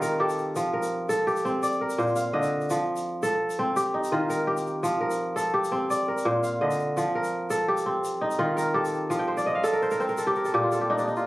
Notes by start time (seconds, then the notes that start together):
Already playing: D#3 C4 D#4 F4 G4
0.02 A#4, shaker
0.20 G4 A4
0.29 shaker
0.38 shaker
0.56 F3, shaker
0.73 A#4
0.82 shaker
1.09 A4, shaker
1.27 G4, shaker
1.36 shaker
1.45 C4, shaker
1.63 D5, shaker
1.72 shaker
1.81 A#4
1.90 shaker
1.98 A#2 C5, shaker
2.07 shaker
2.16 F5, shaker
2.33 D3 D#5
2.43 shaker
2.61 shaker
2.70 F3, shaker
2.96 shaker
3.23 A4, shaker
3.50 shaker
3.59 C4
3.76 G4, shaker
3.94 D#4
4.04 shaker
4.12 D#3 F4
4.30 A#4, shaker
4.47 G4
4.57 shaker
4.66 shaker
4.83 F3, shaker
5.01 A#4
5.10 shaker
5.36 A4, shaker
5.54 G4
5.64 shaker
5.72 C4
5.90 D5, shaker
6.08 A#4
6.18 shaker
6.25 A#2 C5
6.43 F5, shaker
6.61 D3 D#5
6.71 shaker
6.79 shaker
6.97 F3, shaker
7.15 A#4
7.24 shaker
7.50 A4, shaker
7.68 G4
7.77 shaker
7.86 C4
8.04 shaker
8.21 D#4
8.31 shaker
8.39 D#3 F4
8.57 A#4, shaker
8.74 G4 A4
8.85 shaker
9.10 F3 F5, shaker
9.19 G5
9.28 C5
9.37 D5, shaker
9.46 D#5
9.55 F5
9.64 A4, shaker
9.73 A#4
9.82 C5, shaker
9.91 A#4, shaker
10.00 C4 C5, shaker
10.08 A#4, shaker
10.17 A4, shaker
10.27 G4
10.35 A#4, shaker
10.45 A4, shaker
10.54 A#2 G4
10.63 F4
10.72 A4, shaker
10.81 G4
10.90 D4 D#4
10.98 D4, shaker
11.07 D#4
11.16 F4, shaker